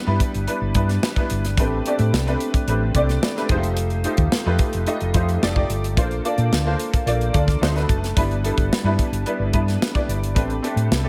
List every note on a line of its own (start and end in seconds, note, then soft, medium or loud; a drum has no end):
0.00 0.06 G3 medium
0.00 0.06 B3 medium
0.00 0.06 D4 medium
0.00 0.07 E4 medium
0.00 0.07 B4 medium
0.06 0.18 G2 medium
0.06 0.32 G3 medium
0.06 0.32 B3 medium
0.06 0.32 D4 medium
0.06 0.32 E4 medium
0.06 0.32 B4 medium
0.20 kick medium
0.20 closed hi-hat medium
0.34 0.45 G1 medium
0.34 closed hi-hat soft
0.47 0.64 G3 medium
0.47 0.64 B3 medium
0.47 0.64 D4 medium
0.47 0.64 E4 medium
0.47 0.65 B4 medium
0.47 closed hi-hat medium
0.61 0.72 G1 medium
0.75 0.97 G2 medium
0.75 1.01 G3 medium
0.75 1.01 B3 medium
0.75 1.01 D4 medium
0.75 1.01 E4 medium
0.75 1.01 B4 medium
0.75 kick medium
0.75 closed hi-hat medium
0.89 snare soft
0.89 closed hi-hat soft
1.03 snare loud
1.16 1.42 G3 medium
1.16 1.42 B3 medium
1.16 1.42 D4 medium
1.16 1.42 E4 medium
1.16 1.42 B4 medium
1.16 kick medium
1.16 closed hi-hat soft
1.30 1.58 G1 medium
1.30 closed hi-hat medium
1.45 snare soft
1.45 closed hi-hat soft
1.57 1.80 A1 medium
1.57 1.75 A3 medium
1.57 1.75 C4 medium
1.57 1.75 D4 medium
1.57 1.75 G4 medium
1.57 1.75 B4 medium
1.57 kick loud
1.57 closed hi-hat medium
1.86 2.11 A3 medium
1.86 2.11 C4 medium
1.86 2.11 D4 medium
1.86 2.11 G4 medium
1.86 2.12 D5 medium
1.86 closed hi-hat medium
1.99 2.10 A2 medium
1.99 closed hi-hat soft
2.13 2.34 C2 medium
2.13 snare medium
2.27 2.52 A3 medium
2.27 2.52 C4 medium
2.27 2.52 D4 medium
2.27 2.53 G4 medium
2.27 2.53 B4 medium
2.27 closed hi-hat soft
2.40 closed hi-hat medium
2.54 kick medium
2.54 closed hi-hat soft
2.67 2.89 A1 loud
2.67 2.84 A3 medium
2.67 2.85 C4 medium
2.67 2.85 D4 medium
2.67 2.85 G4 medium
2.67 2.85 B4 medium
2.67 closed hi-hat medium
2.94 3.17 C2 medium
2.94 3.20 A3 medium
2.94 3.21 C4 medium
2.94 3.21 D4 medium
2.94 3.21 G4 medium
2.94 3.21 D5 medium
2.94 kick medium
2.94 closed hi-hat medium
3.09 snare soft
3.09 closed hi-hat soft
3.23 snare loud
3.36 3.50 A3 medium
3.36 3.50 C4 medium
3.36 3.50 D4 medium
3.36 3.49 G4 medium
3.36 3.50 B4 medium
3.36 snare soft
3.49 4.04 F1 medium
3.49 3.56 G#3 medium
3.49 3.94 D#4 medium
3.49 3.94 F4 medium
3.49 3.94 G4 medium
3.49 3.94 C5 medium
3.49 kick medium
3.49 closed hi-hat medium
3.56 3.97 A3 medium
3.63 closed hi-hat soft
3.77 closed hi-hat medium
3.90 closed hi-hat soft
4.04 4.30 A3 medium
4.04 4.30 D#4 medium
4.04 4.30 F4 medium
4.04 4.30 G4 medium
4.04 4.30 C5 medium
4.04 closed hi-hat medium
4.17 4.29 D#2 medium
4.17 kick medium
4.17 closed hi-hat soft
4.32 muted fingered electric bass stroke soft
4.32 snare loud
4.45 4.57 F2 medium
4.45 4.71 A3 medium
4.45 4.71 D#4 medium
4.45 4.71 F4 medium
4.45 4.72 G4 medium
4.45 4.72 B4 medium
4.59 kick medium
4.59 closed hi-hat medium
4.73 4.85 F1 medium
4.73 closed hi-hat soft
4.87 5.04 A3 medium
4.87 5.04 D#4 medium
4.87 5.04 F4 medium
4.87 5.04 G4 medium
4.87 5.04 D#5 medium
4.87 closed hi-hat medium
5.00 5.12 F1 medium
5.00 closed hi-hat soft
5.14 5.36 F2 medium
5.14 5.39 A3 medium
5.14 5.40 D#4 medium
5.14 5.40 F4 medium
5.14 5.40 G4 medium
5.14 5.40 C5 medium
5.14 kick medium
5.14 closed hi-hat medium
5.29 closed hi-hat soft
5.42 5.64 F1 medium
5.42 5.53 A3 medium
5.42 5.53 D#4 medium
5.42 5.53 F4 medium
5.42 5.53 G4 medium
5.42 5.54 D5 medium
5.42 snare loud
5.55 5.81 A3 medium
5.55 5.81 D#4 medium
5.55 5.81 F4 medium
5.55 5.81 G4 medium
5.55 5.82 D5 medium
5.55 kick medium
5.69 5.97 G1 medium
5.69 closed hi-hat medium
5.84 closed hi-hat soft
5.97 6.19 A#1 medium
5.97 6.14 A#3 medium
5.97 6.14 D4 medium
5.97 6.14 F4 medium
5.97 6.14 A4 medium
5.97 6.14 C5 medium
5.97 kick loud
5.97 closed hi-hat medium
6.11 closed hi-hat soft
6.24 6.50 A#3 medium
6.24 6.50 D4 medium
6.24 6.50 F4 medium
6.24 6.50 A4 medium
6.24 6.50 D5 medium
6.24 closed hi-hat medium
6.38 6.49 A#2 medium
6.38 closed hi-hat soft
6.52 6.74 D2 medium
6.52 snare loud
6.65 6.91 A#3 medium
6.65 6.91 D4 medium
6.65 6.91 F4 medium
6.65 6.91 A4 medium
6.65 6.92 C5 medium
6.79 closed hi-hat medium
6.94 kick medium
6.94 closed hi-hat soft
7.06 7.28 A#1 medium
7.06 7.23 A#3 medium
7.06 7.24 D4 medium
7.06 7.24 F4 medium
7.06 7.24 A4 medium
7.06 7.24 D5 medium
7.06 closed hi-hat medium
7.21 closed hi-hat soft
7.33 7.56 D2 medium
7.33 7.59 A#3 medium
7.33 7.59 D4 medium
7.33 7.59 F4 medium
7.33 7.59 A4 medium
7.33 7.60 D5 medium
7.33 kick medium
7.33 closed hi-hat medium
7.48 kick medium
7.48 snare soft
7.48 closed hi-hat soft
7.61 7.83 D2 medium
7.61 7.72 A3 medium
7.61 7.72 D4 medium
7.61 7.73 D#4 medium
7.61 7.73 F#4 medium
7.61 7.73 C5 medium
7.61 7.87 F#5 medium
7.61 snare loud
7.75 8.00 A3 medium
7.75 8.00 D4 medium
7.75 8.01 D#4 medium
7.75 8.01 F#4 medium
7.75 8.01 B4 medium
7.75 snare soft
7.75 closed hi-hat soft
7.89 8.11 F#1 medium
7.89 8.15 A5 medium
7.89 kick medium
7.89 closed hi-hat medium
8.04 snare soft
8.04 closed hi-hat soft
8.16 8.50 G1 medium
8.16 8.33 G3 medium
8.16 8.33 B3 medium
8.16 8.34 D4 medium
8.16 8.34 E4 medium
8.16 8.34 B4 medium
8.16 kick loud
8.16 closed hi-hat medium
8.31 closed hi-hat soft
8.44 8.69 G3 medium
8.44 8.69 B3 medium
8.44 8.69 D4 medium
8.44 8.69 E4 medium
8.44 8.70 A4 medium
8.44 closed hi-hat medium
8.57 8.68 G1 medium
8.57 kick medium
8.57 closed hi-hat soft
8.70 muted fingered electric bass stroke soft
8.70 snare loud
8.84 8.95 G2 medium
8.84 9.10 G3 medium
8.84 9.10 B3 medium
8.84 9.10 D4 medium
8.84 9.10 E4 medium
8.84 9.11 B4 medium
8.99 kick medium
8.99 closed hi-hat medium
9.12 9.23 G1 medium
9.12 closed hi-hat soft
9.26 9.43 G3 medium
9.26 9.43 B3 medium
9.26 9.43 D4 medium
9.26 9.43 E4 medium
9.26 9.44 B4 medium
9.26 closed hi-hat medium
9.39 9.51 G1 medium
9.53 9.76 G2 medium
9.53 9.79 G3 medium
9.53 9.79 B3 medium
9.53 9.79 D4 medium
9.53 9.79 E4 medium
9.53 9.79 B4 medium
9.53 kick medium
9.53 closed hi-hat medium
9.68 snare soft
9.68 closed hi-hat soft
9.82 snare loud
9.93 10.19 G3 medium
9.93 10.20 B3 medium
9.93 10.20 D4 medium
9.93 10.20 E4 medium
9.93 10.20 D5 medium
9.93 kick medium
9.93 closed hi-hat soft
10.08 10.36 G1 medium
10.08 closed hi-hat medium
10.23 closed hi-hat soft
10.35 10.58 A1 loud
10.35 10.52 A3 medium
10.35 10.53 C4 medium
10.35 10.53 D4 medium
10.35 10.53 G4 medium
10.35 10.53 B4 medium
10.35 kick loud
10.35 closed hi-hat medium
10.50 closed hi-hat soft
10.62 10.88 A3 medium
10.62 10.88 C4 medium
10.62 10.89 D4 medium
10.62 10.89 G4 medium
10.62 10.89 A4 medium
10.62 closed hi-hat medium
10.76 10.88 A2 medium
10.76 closed hi-hat soft
10.91 11.09 C2 medium
10.91 snare loud
11.03 11.09 A3 medium
11.03 11.09 C4 medium
11.03 11.09 D4 medium
11.03 11.09 G4 medium
11.03 11.09 A4 medium